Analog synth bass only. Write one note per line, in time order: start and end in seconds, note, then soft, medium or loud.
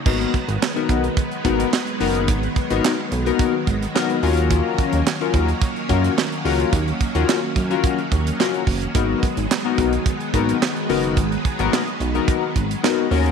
0.06 0.25 G#1 loud
0.48 0.58 G#1 loud
0.89 1.09 B1 loud
1.45 1.64 G#1 loud
2.01 2.30 F#1 medium
2.28 2.48 G#1 loud
2.71 2.80 G#1 medium
3.12 3.31 B1 loud
3.67 3.86 G#1 medium
4.23 4.62 D#2 loud
4.93 5.02 D#2 medium
5.34 5.53 D#2 loud
5.89 6.09 F#2 loud
6.45 6.64 C#2 medium
6.73 6.92 D#2 medium
7.15 7.24 D#2 medium
7.56 7.75 F#2 loud
8.12 8.31 D#2 medium
8.67 8.86 F#1 medium
8.95 9.14 G#1 loud
9.37 9.47 G#1 loud
9.78 9.98 B1 loud
10.34 10.53 G#1 medium
10.89 11.18 F#1 medium
11.17 11.36 G#1 loud
11.59 11.69 G#1 loud
12.00 12.20 B1 loud
12.56 12.75 G#1 medium
13.11 13.31 D#2 loud